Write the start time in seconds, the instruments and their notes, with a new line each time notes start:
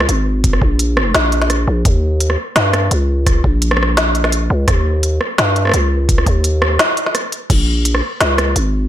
0.00 cross-stick
0.09 808-style bass G#1, closed hi-hat
0.44 kick, closed hi-hat
0.53 cross-stick
0.62 808-style bass A#1, kick
0.79 closed hi-hat
0.97 cross-stick
1.15 808-style bass A#1, snare, closed hi-hat
1.32 closed hi-hat
1.42 snare
1.50 cross-stick, closed hi-hat
1.68 808-style bass A#1
1.85 808-style bass D#2, kick, closed hi-hat
2.20 closed hi-hat
2.30 cross-stick
2.56 808-style bass G2, snare, closed hi-hat
2.73 cross-stick, closed hi-hat
2.91 808-style bass C#2, closed hi-hat
3.27 kick, cross-stick, closed hi-hat
3.44 808-style bass A#1, kick
3.62 closed hi-hat
3.71 cross-stick
3.77 cross-stick
3.83 cross-stick
3.97 snare, closed hi-hat
4.15 closed hi-hat
4.24 cross-stick, snare
4.32 closed hi-hat
4.50 808-style bass C#2
4.68 808-style bass D#2, kick, cross-stick, closed hi-hat
5.03 closed hi-hat
5.21 cross-stick
5.38 808-style bass G2, snare, closed hi-hat
5.56 closed hi-hat
5.65 cross-stick
5.67 cross-stick
5.69 cross-stick
5.72 808-style bass C#2, cross-stick, closed hi-hat
6.09 kick, closed hi-hat
6.18 cross-stick
6.26 808-style bass D#2, kick, closed hi-hat
6.44 closed hi-hat
6.62 cross-stick
6.79 snare, closed hi-hat
6.97 closed hi-hat
7.06 snare
7.15 cross-stick, closed hi-hat
7.32 closed hi-hat
7.50 808-style bass A#1, kick, closed hi-hat, crash
7.85 closed hi-hat
7.95 cross-stick
8.21 808-style bass C#2, snare, closed hi-hat
8.38 cross-stick, closed hi-hat
8.56 808-style bass G#1, closed hi-hat